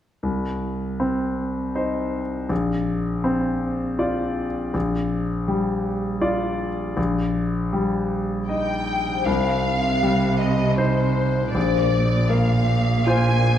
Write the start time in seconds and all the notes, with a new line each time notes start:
0.23 C2
1.00 C4
1.75 D#4 C5
2.49 A#1
3.24 C4
3.99 F4 D5
4.74 A#1
5.48 G3
6.22 F4 D5
6.97 A#1
7.73 G3
8.49 D#4 D#5 G5
9.08 C3
9.12 D#4
9.17 G4
9.21 C5
9.26 C2 C3 F5
10.03 G3
10.39 D#5
10.77 D#4 C5
11.37 A#2
11.41 F4
11.46 A#4
11.50 C5 D5
11.55 A#1 A#2
12.30 A#3 F5
13.07 F4 C5 G#5